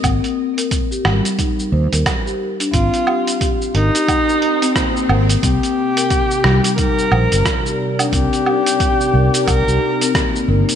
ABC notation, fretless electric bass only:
X:1
M:4/4
L:1/16
Q:"Swing 16ths" 1/4=89
K:Cm
V:1 name="Fretless electric bass" clef=bass
A,,, z4 z A,,, z3 E,, E,, z4 | A,,, z4 z A,,, z6 z A,,, z | C,, z4 z C,, z3 B,,, G,,, z4 | C,, z4 z C,, z C,, C,, z4 G,,, z |]